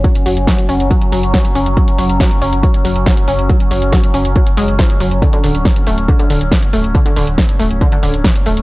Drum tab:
HH |xxoxxxoxxxoxxxox|xxoxxxoxxxoxxxox|xxoxxxoxxxoxxxox|xxoxxxoxxxoxxxox|
SD |----o-------o---|----o-------o---|----o-------o---|----o-------o---|
BD |o---o---o---o---|o---o---o---o---|o---o---o---o---|o---o---o---o---|

HH |xxoxxxoxxxoxxxox|
SD |----o-------o---|
BD |o---o---o---o---|